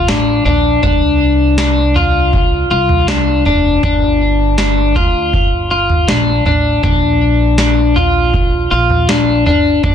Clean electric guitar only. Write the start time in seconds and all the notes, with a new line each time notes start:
0.08 D4
0.45 D4
0.83 D4
1.59 D4
1.96 F4
2.71 F4
3.09 D4
3.46 D4
3.83 D4
4.58 D4
4.96 F4
5.71 F4
6.09 D4
6.46 D4
6.84 D4
7.58 D4
7.96 F4
8.71 F4
9.09 D4
9.46 D4
9.84 D4